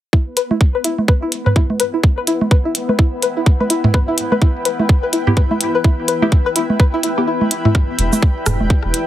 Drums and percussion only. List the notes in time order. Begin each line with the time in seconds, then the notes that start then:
0.13 kick
0.37 closed hi-hat
0.51 high conga
0.61 kick
0.84 closed hi-hat
0.98 high conga
1.08 kick
1.32 closed hi-hat
1.46 mid tom
1.56 kick
1.70 high conga
1.80 closed hi-hat
2.04 kick
2.27 closed hi-hat
2.41 high conga
2.51 kick
2.75 closed hi-hat
2.89 high conga
2.99 kick
3.22 closed hi-hat
3.46 kick
3.60 high conga
3.70 closed hi-hat
3.84 mid tom, high conga
3.94 kick
4.18 closed hi-hat
4.32 high conga
4.42 kick
4.65 closed hi-hat
4.80 high conga
4.89 kick
5.13 closed hi-hat
5.27 mid tom
5.37 kick
5.51 high conga
5.61 closed hi-hat
5.84 kick
6.08 closed hi-hat
6.22 high conga
6.32 kick
6.56 closed hi-hat
6.70 high conga
6.80 kick
7.03 closed hi-hat
7.41 high conga
7.51 closed hi-hat
7.65 mid tom, high conga
7.75 kick, cross-stick
7.99 closed hi-hat
8.13 high conga, cabasa
8.22 kick
8.46 cross-stick, closed hi-hat, mid tom, cabasa
8.60 high conga
8.70 kick
8.94 closed hi-hat